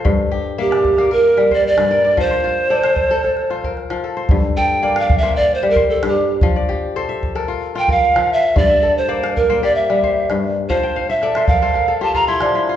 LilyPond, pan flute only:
\new Staff \with { instrumentName = "Pan flute" } { \time 4/4 \key g \dorian \tempo 4 = 113 r4 g'4 bes'8. d''16 d''4 | c''2. r4 | r8 g''8~ \tuplet 3/2 { g''8 f''8 e''8 d''8 c''8 bes'8 a'8 g'8. r16 } | r2 r8 g''16 f''8. e''8 |
d''8. c''8. bes'8 d''16 e''4 r8. | c''8. e''8. f''4 a''16 bes''16 c'''4 | }